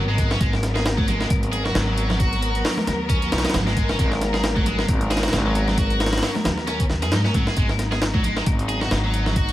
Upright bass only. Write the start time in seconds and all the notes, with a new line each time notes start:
Already playing: G#1
0.41 G#1
1.30 G#1
1.75 G#1
2.87 D#2
3.32 B1
3.45 muted upright bass stroke
3.54 G#1
3.89 G#1
3.99 G#1
4.88 G#1
5.33 G#1
6.45 D#2
6.90 D#2
7.12 G#2
7.35 G#1
7.57 G#1
8.46 G#1
8.92 G#1